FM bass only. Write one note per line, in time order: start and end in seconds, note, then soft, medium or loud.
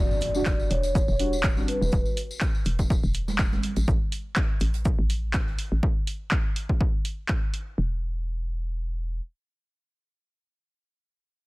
0.71 1.04 E1 medium
1.08 1.65 E1 loud
1.81 1.90 E1 medium
1.93 2.03 E1 loud
2.66 2.99 E1 medium
3.04 3.60 E1 loud
3.77 3.86 A1 medium
3.88 3.98 A1 loud
4.61 4.94 A1 medium
4.99 5.55 A1 loud
5.72 5.81 A1 medium
7.78 9.20 E1 medium